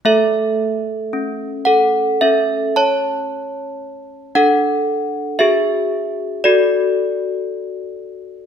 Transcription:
\new Staff \with { instrumentName = "Handbells" } { \time 4/4 \key a \major \tempo 4 = 57 << { <a' e''>4. <a' fis''>8 <a' e''>8 <cis'' a''>4. | <a' fis''>4 <gis' e''>4 <fis' d''>2 | } \\ { a4 cis'4 cis'2 | d'4 fis'4 a'2 | } >> }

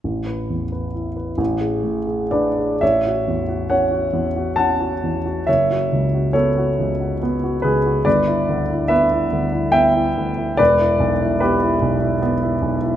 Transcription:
\new Staff \with { instrumentName = "Grand piano" } { \time 3/4 \key a \major \tempo 4 = 70 << { r2 r8 <b' d''>8 | <cis'' e''>4 <cis'' fis''>4 <fis'' a''>4 | <cis'' e''>4 <a' cis''>4 r8 <gis' b'>8 | <b' d''>4 <b' e''>4 <e'' g''>4 |
<b' d''>4 <g' b'>4 r4 | } \\ { a,,16 b'16 e,16 b'16 e'16 b'16 a,,16 gis'16 a,16 gis'16 d'16 gis'16 | a,,16 fis'16 e,16 fis'16 cis'16 fis'16 e,16 fis'16 cis'16 fis'16 e,16 fis'16 | fis,,16 fis'16 cis,16 fis'16 b16 fis'16 cis,16 fis'16 b16 fis'16 cis,16 fis'16 | g,,16 e'16 d,16 e'16 b16 e'16 d,16 e'16 b16 e'16 d,16 e'16 |
e,,16 e'16 b,,16 e'16 b16 e'16 b,,16 e'16 b16 e'16 b,,16 e'16 | } >> }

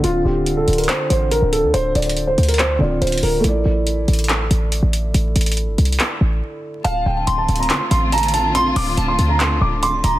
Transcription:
<<
  \new Staff \with { instrumentName = "Synth bell" } { \time 4/4 \key d \minor \tempo 4 = 141 r1 | r1 | r1 | r1 |
a''4 c'''2 a''8 bes''8 | c'''4 a''2 d'''8 c'''8 | }
  \new Staff \with { instrumentName = "Grand piano" } { \time 4/4 \key d \minor f'8 g'8. a'8 bes'16 c''8 c''8 bes'8 a'8 | c''8 d''8. c''8 bes'16 c''8 d''8 c''8 bes'8 | r1 | r1 |
f''8 g''8. a''8 bes''16 c'''8 c'''8 bes''8 a''8 | c'''8 d'''8. c'''8 bes''16 c'''8 d'''8 c'''8 bes''8 | }
  \new Staff \with { instrumentName = "Felt piano" } { \time 4/4 \key d \minor <d c' f'>1~ | <d c' f'>2~ <d c' f'>8 <d c' f'>4. | <a e' d''>1~ | <a e' d''>1 |
r1 | r1 | }
  \new Staff \with { instrumentName = "String section" } { \time 4/4 \key d \minor r1 | r1 | r1 | r1 |
<d a c' f'>1~ | <d a c' f'>1 | }
  \new Staff \with { instrumentName = "808-style bass" } { \clef bass \time 4/4 \key d \minor d,,8 d,,4 d,,8 r8 a,,8. d,,8 d,16 | d,,8 d,,4 d,4 d,,8 d,,8 d,,8 | a,,8 a,,4 a,,4 a,,8. a,,8. | a,,8 a,,8. g,,16 c,8 r8 a,,8 r4 |
d,,8 d,,8 d,,8 d,,8 r8 a,,4.~ | a,,8 d,,8 d,,8 d,4 d,,4 d,,8 | }
  \new DrumStaff \with { instrumentName = "Drums" } \drummode { \time 4/4 hh4 hh8 hh32 hh32 hh32 hh32 <hc hh>8 hh8 hh8 hh8 | \tuplet 3/2 { hh16 r16 r16 hh16 hh16 hh16 } hh8 hh32 hh32 hh32 hh32 <hc hh>4 hh32 hh32 hh32 hh32 hho8 | hh4 hh8 hh32 hh32 hh32 hh32 <hc hh>8 hh8 hh8 hh8 | hh8 hh32 hh32 hh32 hh32 \tuplet 3/2 { hh16 r16 r16 hh16 hh16 hh16 } <hc hh>4 r4 |
hh4 \tuplet 3/2 { hh16 r16 r16 hh16 hh16 hh16 } <hc hh>8 hh8 hh32 hh32 hh32 hh32 hh8 | hh8 hho8 hh8 hh8 <hc hh>4 hh8 hh8 | }
>>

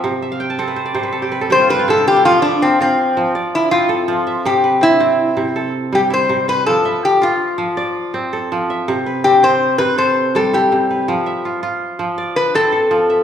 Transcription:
<<
  \new Staff \with { instrumentName = "Resonator guitar played with a steel bar" } { \time 12/8 \key f \lydian \tempo 4. = 109 r1 c''8 b'8 a'8 g'8 | f'8 d'8 c'8 c'4. r8 e'8 f'2 | g'4 e'2~ e'8 r8 g'8 c''4 b'8 | a'4 g'8 f'2~ f'8 r2 |
r4 g'8 c''4 b'8 c''4 a'8 g'4.~ | g'4 r2 r8 b'8 a'2 | }
  \new Staff \with { instrumentName = "Kora" } { \time 12/8 \key f \lydian e''8 e''16 f''16 g''16 a''16 a'16 b'16 c''16 d''16 c''16 b'16 a'16 g'16 b'16 a'16 g'16 f'16 g'16 f'16 e'16 d'16 f'16 e'16~ | e'16 r16 e''8 f'4. r8 d''4. a'4 e''8~ | e''8 b'8 c'4. r8 a'4. e'4 b'8~ | b'8 e''4. r4 d''4. a'4 e''8~ |
e''8 b'8 c'4. r8 a'4. e'4 b'8~ | b'8 e''8 f'4. r8 d''4. a'4 e''8 | }
  \new Staff \with { instrumentName = "Kora" } { \clef bass \time 12/8 \key f \lydian c4 r8 c'4 c4 r8 g4 c4 | f4 r8 f'4 f4 r8 c'4 f4 | c4 r8 c'4 c4 r8 g4 c4 | f4 r8 f'4 f4 r8 c'4 f4 |
c4 r8 c'4 c4 r8 g4 c4 | f4 r8 f'4 f4 r8 c'4 f4 | }
>>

